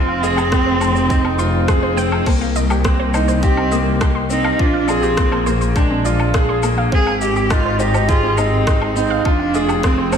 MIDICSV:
0, 0, Header, 1, 7, 480
1, 0, Start_track
1, 0, Tempo, 582524
1, 1867, Time_signature, 4, 2, 24, 8
1, 8386, End_track
2, 0, Start_track
2, 0, Title_t, "Synth arpeggio sound"
2, 0, Program_c, 0, 84
2, 70, Note_on_c, 0, 77, 73
2, 140, Note_off_c, 0, 77, 0
2, 189, Note_on_c, 0, 75, 79
2, 235, Note_off_c, 0, 75, 0
2, 300, Note_on_c, 0, 67, 102
2, 332, Note_off_c, 0, 67, 0
2, 545, Note_on_c, 0, 72, 96
2, 574, Note_off_c, 0, 72, 0
2, 661, Note_on_c, 0, 72, 101
2, 692, Note_off_c, 0, 72, 0
2, 783, Note_on_c, 0, 72, 71
2, 813, Note_off_c, 0, 72, 0
2, 905, Note_on_c, 0, 79, 75
2, 954, Note_off_c, 0, 79, 0
2, 1026, Note_on_c, 0, 60, 72
2, 1074, Note_off_c, 0, 60, 0
2, 1142, Note_on_c, 0, 84, 72
2, 1192, Note_off_c, 0, 84, 0
2, 1386, Note_on_c, 0, 84, 77
2, 1415, Note_off_c, 0, 84, 0
2, 1505, Note_on_c, 0, 72, 108
2, 1553, Note_off_c, 0, 72, 0
2, 1626, Note_on_c, 0, 79, 100
2, 1697, Note_off_c, 0, 79, 0
2, 1746, Note_on_c, 0, 72, 74
2, 1794, Note_off_c, 0, 72, 0
2, 1868, Note_on_c, 0, 72, 81
2, 1915, Note_off_c, 0, 72, 0
2, 1987, Note_on_c, 0, 77, 78
2, 2058, Note_off_c, 0, 77, 0
2, 2108, Note_on_c, 0, 75, 77
2, 2155, Note_off_c, 0, 75, 0
2, 2229, Note_on_c, 0, 67, 107
2, 2257, Note_off_c, 0, 67, 0
2, 2468, Note_on_c, 0, 72, 103
2, 2496, Note_off_c, 0, 72, 0
2, 2588, Note_on_c, 0, 72, 101
2, 2616, Note_off_c, 0, 72, 0
2, 2703, Note_on_c, 0, 72, 74
2, 2733, Note_off_c, 0, 72, 0
2, 2823, Note_on_c, 0, 79, 76
2, 2872, Note_off_c, 0, 79, 0
2, 2945, Note_on_c, 0, 60, 79
2, 2993, Note_off_c, 0, 60, 0
2, 3063, Note_on_c, 0, 75, 75
2, 3112, Note_off_c, 0, 75, 0
2, 3303, Note_on_c, 0, 84, 107
2, 3352, Note_off_c, 0, 84, 0
2, 3419, Note_on_c, 0, 84, 78
2, 3494, Note_off_c, 0, 84, 0
2, 3662, Note_on_c, 0, 77, 100
2, 3693, Note_off_c, 0, 77, 0
2, 3782, Note_on_c, 0, 72, 84
2, 3832, Note_off_c, 0, 72, 0
2, 3902, Note_on_c, 0, 77, 74
2, 3975, Note_off_c, 0, 77, 0
2, 4017, Note_on_c, 0, 74, 80
2, 4069, Note_off_c, 0, 74, 0
2, 4139, Note_on_c, 0, 67, 105
2, 4171, Note_off_c, 0, 67, 0
2, 4378, Note_on_c, 0, 72, 102
2, 4411, Note_off_c, 0, 72, 0
2, 4501, Note_on_c, 0, 72, 94
2, 4532, Note_off_c, 0, 72, 0
2, 4622, Note_on_c, 0, 72, 77
2, 4653, Note_off_c, 0, 72, 0
2, 4744, Note_on_c, 0, 79, 80
2, 4793, Note_off_c, 0, 79, 0
2, 4865, Note_on_c, 0, 60, 79
2, 4913, Note_off_c, 0, 60, 0
2, 4986, Note_on_c, 0, 74, 76
2, 5034, Note_off_c, 0, 74, 0
2, 5225, Note_on_c, 0, 84, 94
2, 5273, Note_off_c, 0, 84, 0
2, 5347, Note_on_c, 0, 84, 80
2, 5418, Note_off_c, 0, 84, 0
2, 5584, Note_on_c, 0, 77, 97
2, 5614, Note_off_c, 0, 77, 0
2, 5702, Note_on_c, 0, 72, 80
2, 5752, Note_off_c, 0, 72, 0
2, 5821, Note_on_c, 0, 77, 78
2, 5895, Note_off_c, 0, 77, 0
2, 5945, Note_on_c, 0, 75, 81
2, 5994, Note_off_c, 0, 75, 0
2, 6067, Note_on_c, 0, 67, 107
2, 6096, Note_off_c, 0, 67, 0
2, 6307, Note_on_c, 0, 72, 96
2, 6336, Note_off_c, 0, 72, 0
2, 6422, Note_on_c, 0, 72, 96
2, 6453, Note_off_c, 0, 72, 0
2, 6545, Note_on_c, 0, 72, 71
2, 6574, Note_off_c, 0, 72, 0
2, 6662, Note_on_c, 0, 79, 83
2, 6712, Note_off_c, 0, 79, 0
2, 6782, Note_on_c, 0, 60, 75
2, 6832, Note_off_c, 0, 60, 0
2, 6902, Note_on_c, 0, 75, 78
2, 6952, Note_off_c, 0, 75, 0
2, 7143, Note_on_c, 0, 84, 98
2, 7192, Note_off_c, 0, 84, 0
2, 7263, Note_on_c, 0, 84, 76
2, 7336, Note_off_c, 0, 84, 0
2, 7501, Note_on_c, 0, 77, 99
2, 7532, Note_off_c, 0, 77, 0
2, 7621, Note_on_c, 0, 72, 77
2, 7671, Note_off_c, 0, 72, 0
2, 7740, Note_on_c, 0, 77, 71
2, 7815, Note_off_c, 0, 77, 0
2, 7864, Note_on_c, 0, 75, 83
2, 7913, Note_off_c, 0, 75, 0
2, 7980, Note_on_c, 0, 67, 99
2, 8012, Note_off_c, 0, 67, 0
2, 8222, Note_on_c, 0, 72, 97
2, 8253, Note_off_c, 0, 72, 0
2, 8343, Note_on_c, 0, 72, 92
2, 8373, Note_off_c, 0, 72, 0
2, 8386, End_track
3, 0, Start_track
3, 0, Title_t, "Grand piano"
3, 0, Program_c, 1, 0
3, 0, Note_on_c, 1, 65, 75
3, 122, Control_c, 1, 64, 127
3, 176, Note_off_c, 1, 65, 0
3, 189, Note_on_c, 1, 68, 82
3, 325, Note_off_c, 1, 68, 0
3, 432, Note_on_c, 1, 60, 79
3, 566, Note_off_c, 1, 60, 0
3, 903, Note_on_c, 1, 63, 77
3, 1042, Note_off_c, 1, 63, 0
3, 1147, Note_on_c, 1, 65, 72
3, 1375, Note_off_c, 1, 65, 0
3, 1386, Note_on_c, 1, 68, 74
3, 1614, Note_off_c, 1, 68, 0
3, 1620, Note_on_c, 1, 60, 81
3, 1851, Note_off_c, 1, 60, 0
3, 1867, Note_on_c, 1, 58, 74
3, 1878, Control_c, 1, 64, 0
3, 2004, Note_off_c, 1, 58, 0
3, 2013, Control_c, 1, 64, 127
3, 2345, Note_on_c, 1, 60, 73
3, 2483, Note_off_c, 1, 60, 0
3, 2589, Note_on_c, 1, 63, 73
3, 2816, Note_off_c, 1, 63, 0
3, 2829, Note_on_c, 1, 67, 85
3, 3056, Note_off_c, 1, 67, 0
3, 3065, Note_on_c, 1, 58, 73
3, 3294, Note_off_c, 1, 58, 0
3, 3546, Note_on_c, 1, 60, 78
3, 3774, Note_off_c, 1, 60, 0
3, 3786, Note_on_c, 1, 65, 73
3, 3798, Control_c, 1, 64, 0
3, 3959, Control_c, 1, 64, 127
3, 4015, Note_off_c, 1, 65, 0
3, 4036, Note_on_c, 1, 68, 75
3, 4168, Note_off_c, 1, 68, 0
3, 4266, Note_on_c, 1, 58, 79
3, 4403, Note_off_c, 1, 58, 0
3, 4508, Note_on_c, 1, 58, 77
3, 4736, Note_off_c, 1, 58, 0
3, 4748, Note_on_c, 1, 62, 79
3, 4884, Note_off_c, 1, 62, 0
3, 4987, Note_on_c, 1, 65, 70
3, 5215, Note_off_c, 1, 65, 0
3, 5225, Note_on_c, 1, 68, 81
3, 5454, Note_off_c, 1, 68, 0
3, 5467, Note_on_c, 1, 58, 80
3, 5695, Note_off_c, 1, 58, 0
3, 5709, Note_on_c, 1, 60, 74
3, 5718, Control_c, 1, 64, 0
3, 5845, Note_off_c, 1, 60, 0
3, 5864, Control_c, 1, 64, 127
3, 6184, Note_on_c, 1, 63, 74
3, 6323, Note_off_c, 1, 63, 0
3, 6429, Note_on_c, 1, 67, 75
3, 6656, Note_off_c, 1, 67, 0
3, 6666, Note_on_c, 1, 68, 84
3, 6895, Note_off_c, 1, 68, 0
3, 6905, Note_on_c, 1, 60, 75
3, 7134, Note_off_c, 1, 60, 0
3, 7382, Note_on_c, 1, 63, 78
3, 7613, Note_off_c, 1, 63, 0
3, 7628, Note_on_c, 1, 65, 79
3, 7638, Control_c, 1, 64, 0
3, 7781, Control_c, 1, 64, 127
3, 7855, Note_off_c, 1, 65, 0
3, 7870, Note_on_c, 1, 68, 83
3, 8005, Note_off_c, 1, 68, 0
3, 8105, Note_on_c, 1, 60, 78
3, 8243, Note_off_c, 1, 60, 0
3, 8340, Note_on_c, 1, 60, 78
3, 8386, Note_off_c, 1, 60, 0
3, 8386, End_track
4, 0, Start_track
4, 0, Title_t, "Cello"
4, 0, Program_c, 2, 42
4, 0, Note_on_c, 2, 60, 127
4, 1627, Note_off_c, 2, 60, 0
4, 2126, Note_on_c, 2, 55, 82
4, 2342, Note_on_c, 2, 58, 97
4, 2355, Note_off_c, 2, 55, 0
4, 2822, Note_on_c, 2, 60, 106
4, 2834, Note_off_c, 2, 58, 0
4, 3304, Note_off_c, 2, 60, 0
4, 3542, Note_on_c, 2, 63, 108
4, 3785, Note_on_c, 2, 62, 117
4, 3798, Note_off_c, 2, 63, 0
4, 4019, Note_on_c, 2, 60, 113
4, 4031, Note_off_c, 2, 62, 0
4, 4499, Note_on_c, 2, 58, 90
4, 4511, Note_off_c, 2, 60, 0
4, 4738, Note_off_c, 2, 58, 0
4, 4743, Note_on_c, 2, 56, 91
4, 5432, Note_off_c, 2, 56, 0
4, 5713, Note_on_c, 2, 68, 121
4, 5933, Note_off_c, 2, 68, 0
4, 5941, Note_on_c, 2, 67, 107
4, 6186, Note_on_c, 2, 65, 109
4, 6198, Note_off_c, 2, 67, 0
4, 6425, Note_on_c, 2, 63, 102
4, 6438, Note_off_c, 2, 65, 0
4, 6661, Note_on_c, 2, 65, 115
4, 6673, Note_off_c, 2, 63, 0
4, 6896, Note_on_c, 2, 63, 99
4, 6908, Note_off_c, 2, 65, 0
4, 7377, Note_on_c, 2, 60, 96
4, 7389, Note_off_c, 2, 63, 0
4, 7619, Note_on_c, 2, 62, 114
4, 7631, Note_off_c, 2, 60, 0
4, 8110, Note_on_c, 2, 60, 93
4, 8122, Note_off_c, 2, 62, 0
4, 8352, Note_on_c, 2, 56, 80
4, 8364, Note_off_c, 2, 60, 0
4, 8386, Note_off_c, 2, 56, 0
4, 8386, End_track
5, 0, Start_track
5, 0, Title_t, "Double bass section"
5, 0, Program_c, 3, 48
5, 0, Note_on_c, 3, 29, 89
5, 1845, Note_off_c, 3, 29, 0
5, 1869, Note_on_c, 3, 36, 96
5, 3764, Note_off_c, 3, 36, 0
5, 3789, Note_on_c, 3, 34, 97
5, 5684, Note_off_c, 3, 34, 0
5, 5706, Note_on_c, 3, 32, 91
5, 7602, Note_off_c, 3, 32, 0
5, 7625, Note_on_c, 3, 29, 91
5, 8386, Note_off_c, 3, 29, 0
5, 8386, End_track
6, 0, Start_track
6, 0, Title_t, "Swell"
6, 0, Program_c, 4, 103
6, 906, Note_on_c, 4, 60, 64
6, 1866, Note_off_c, 4, 60, 0
6, 8386, End_track
7, 0, Start_track
7, 0, Title_t, "Drums"
7, 193, Note_on_c, 9, 82, 63
7, 276, Note_off_c, 9, 82, 0
7, 313, Note_on_c, 9, 77, 69
7, 313, Note_on_c, 9, 82, 28
7, 395, Note_off_c, 9, 77, 0
7, 395, Note_off_c, 9, 82, 0
7, 428, Note_on_c, 9, 36, 105
7, 431, Note_on_c, 9, 37, 105
7, 431, Note_on_c, 9, 82, 42
7, 510, Note_off_c, 9, 36, 0
7, 513, Note_off_c, 9, 37, 0
7, 513, Note_off_c, 9, 82, 0
7, 669, Note_on_c, 9, 77, 66
7, 669, Note_on_c, 9, 82, 57
7, 752, Note_off_c, 9, 77, 0
7, 752, Note_off_c, 9, 82, 0
7, 789, Note_on_c, 9, 82, 42
7, 871, Note_off_c, 9, 82, 0
7, 908, Note_on_c, 9, 36, 100
7, 910, Note_on_c, 9, 82, 42
7, 990, Note_off_c, 9, 36, 0
7, 992, Note_off_c, 9, 82, 0
7, 1028, Note_on_c, 9, 77, 66
7, 1110, Note_off_c, 9, 77, 0
7, 1144, Note_on_c, 9, 82, 61
7, 1226, Note_off_c, 9, 82, 0
7, 1386, Note_on_c, 9, 37, 89
7, 1386, Note_on_c, 9, 77, 65
7, 1386, Note_on_c, 9, 82, 39
7, 1387, Note_on_c, 9, 36, 101
7, 1469, Note_off_c, 9, 37, 0
7, 1469, Note_off_c, 9, 77, 0
7, 1469, Note_off_c, 9, 82, 0
7, 1470, Note_off_c, 9, 36, 0
7, 1630, Note_on_c, 9, 82, 62
7, 1713, Note_off_c, 9, 82, 0
7, 1749, Note_on_c, 9, 77, 69
7, 1831, Note_off_c, 9, 77, 0
7, 1866, Note_on_c, 9, 36, 98
7, 1869, Note_on_c, 9, 49, 78
7, 1869, Note_on_c, 9, 77, 68
7, 1948, Note_off_c, 9, 36, 0
7, 1951, Note_off_c, 9, 49, 0
7, 1951, Note_off_c, 9, 77, 0
7, 2108, Note_on_c, 9, 82, 67
7, 2191, Note_off_c, 9, 82, 0
7, 2227, Note_on_c, 9, 77, 70
7, 2227, Note_on_c, 9, 82, 30
7, 2309, Note_off_c, 9, 77, 0
7, 2309, Note_off_c, 9, 82, 0
7, 2344, Note_on_c, 9, 36, 108
7, 2347, Note_on_c, 9, 37, 108
7, 2347, Note_on_c, 9, 82, 45
7, 2427, Note_off_c, 9, 36, 0
7, 2430, Note_off_c, 9, 37, 0
7, 2430, Note_off_c, 9, 82, 0
7, 2587, Note_on_c, 9, 77, 67
7, 2587, Note_on_c, 9, 82, 57
7, 2670, Note_off_c, 9, 77, 0
7, 2670, Note_off_c, 9, 82, 0
7, 2706, Note_on_c, 9, 82, 46
7, 2788, Note_off_c, 9, 82, 0
7, 2824, Note_on_c, 9, 82, 45
7, 2825, Note_on_c, 9, 36, 107
7, 2907, Note_off_c, 9, 36, 0
7, 2907, Note_off_c, 9, 82, 0
7, 2945, Note_on_c, 9, 77, 66
7, 3027, Note_off_c, 9, 77, 0
7, 3064, Note_on_c, 9, 82, 62
7, 3146, Note_off_c, 9, 82, 0
7, 3304, Note_on_c, 9, 37, 96
7, 3304, Note_on_c, 9, 77, 68
7, 3304, Note_on_c, 9, 82, 41
7, 3305, Note_on_c, 9, 36, 105
7, 3386, Note_off_c, 9, 37, 0
7, 3386, Note_off_c, 9, 77, 0
7, 3386, Note_off_c, 9, 82, 0
7, 3387, Note_off_c, 9, 36, 0
7, 3545, Note_on_c, 9, 82, 66
7, 3628, Note_off_c, 9, 82, 0
7, 3663, Note_on_c, 9, 77, 70
7, 3745, Note_off_c, 9, 77, 0
7, 3785, Note_on_c, 9, 36, 101
7, 3868, Note_off_c, 9, 36, 0
7, 4024, Note_on_c, 9, 77, 66
7, 4024, Note_on_c, 9, 82, 66
7, 4107, Note_off_c, 9, 77, 0
7, 4107, Note_off_c, 9, 82, 0
7, 4144, Note_on_c, 9, 82, 30
7, 4226, Note_off_c, 9, 82, 0
7, 4262, Note_on_c, 9, 37, 101
7, 4262, Note_on_c, 9, 82, 45
7, 4265, Note_on_c, 9, 36, 114
7, 4345, Note_off_c, 9, 37, 0
7, 4345, Note_off_c, 9, 82, 0
7, 4347, Note_off_c, 9, 36, 0
7, 4385, Note_on_c, 9, 77, 72
7, 4467, Note_off_c, 9, 77, 0
7, 4505, Note_on_c, 9, 82, 63
7, 4587, Note_off_c, 9, 82, 0
7, 4626, Note_on_c, 9, 82, 44
7, 4708, Note_off_c, 9, 82, 0
7, 4744, Note_on_c, 9, 36, 110
7, 4747, Note_on_c, 9, 77, 70
7, 4747, Note_on_c, 9, 82, 46
7, 4826, Note_off_c, 9, 36, 0
7, 4830, Note_off_c, 9, 77, 0
7, 4830, Note_off_c, 9, 82, 0
7, 4989, Note_on_c, 9, 82, 67
7, 5071, Note_off_c, 9, 82, 0
7, 5106, Note_on_c, 9, 77, 70
7, 5188, Note_off_c, 9, 77, 0
7, 5224, Note_on_c, 9, 36, 106
7, 5226, Note_on_c, 9, 37, 97
7, 5226, Note_on_c, 9, 82, 44
7, 5307, Note_off_c, 9, 36, 0
7, 5309, Note_off_c, 9, 37, 0
7, 5309, Note_off_c, 9, 82, 0
7, 5463, Note_on_c, 9, 77, 70
7, 5463, Note_on_c, 9, 82, 67
7, 5546, Note_off_c, 9, 77, 0
7, 5546, Note_off_c, 9, 82, 0
7, 5704, Note_on_c, 9, 36, 109
7, 5787, Note_off_c, 9, 36, 0
7, 5825, Note_on_c, 9, 77, 63
7, 5907, Note_off_c, 9, 77, 0
7, 5945, Note_on_c, 9, 82, 70
7, 6027, Note_off_c, 9, 82, 0
7, 6064, Note_on_c, 9, 82, 30
7, 6147, Note_off_c, 9, 82, 0
7, 6184, Note_on_c, 9, 36, 114
7, 6184, Note_on_c, 9, 37, 105
7, 6184, Note_on_c, 9, 77, 69
7, 6184, Note_on_c, 9, 82, 49
7, 6266, Note_off_c, 9, 36, 0
7, 6266, Note_off_c, 9, 37, 0
7, 6266, Note_off_c, 9, 77, 0
7, 6266, Note_off_c, 9, 82, 0
7, 6423, Note_on_c, 9, 82, 68
7, 6505, Note_off_c, 9, 82, 0
7, 6545, Note_on_c, 9, 77, 69
7, 6545, Note_on_c, 9, 82, 46
7, 6628, Note_off_c, 9, 77, 0
7, 6628, Note_off_c, 9, 82, 0
7, 6664, Note_on_c, 9, 36, 123
7, 6666, Note_on_c, 9, 82, 46
7, 6746, Note_off_c, 9, 36, 0
7, 6749, Note_off_c, 9, 82, 0
7, 6904, Note_on_c, 9, 77, 65
7, 6904, Note_on_c, 9, 82, 69
7, 6986, Note_off_c, 9, 77, 0
7, 6986, Note_off_c, 9, 82, 0
7, 7144, Note_on_c, 9, 36, 109
7, 7146, Note_on_c, 9, 37, 98
7, 7146, Note_on_c, 9, 82, 43
7, 7227, Note_off_c, 9, 36, 0
7, 7229, Note_off_c, 9, 37, 0
7, 7229, Note_off_c, 9, 82, 0
7, 7264, Note_on_c, 9, 77, 66
7, 7346, Note_off_c, 9, 77, 0
7, 7387, Note_on_c, 9, 82, 68
7, 7469, Note_off_c, 9, 82, 0
7, 7624, Note_on_c, 9, 36, 104
7, 7626, Note_on_c, 9, 77, 63
7, 7706, Note_off_c, 9, 36, 0
7, 7709, Note_off_c, 9, 77, 0
7, 7864, Note_on_c, 9, 82, 62
7, 7947, Note_off_c, 9, 82, 0
7, 7986, Note_on_c, 9, 77, 64
7, 7986, Note_on_c, 9, 82, 29
7, 8068, Note_off_c, 9, 77, 0
7, 8068, Note_off_c, 9, 82, 0
7, 8103, Note_on_c, 9, 36, 112
7, 8108, Note_on_c, 9, 37, 100
7, 8108, Note_on_c, 9, 82, 46
7, 8185, Note_off_c, 9, 36, 0
7, 8190, Note_off_c, 9, 37, 0
7, 8190, Note_off_c, 9, 82, 0
7, 8343, Note_on_c, 9, 77, 65
7, 8343, Note_on_c, 9, 82, 62
7, 8386, Note_off_c, 9, 77, 0
7, 8386, Note_off_c, 9, 82, 0
7, 8386, End_track
0, 0, End_of_file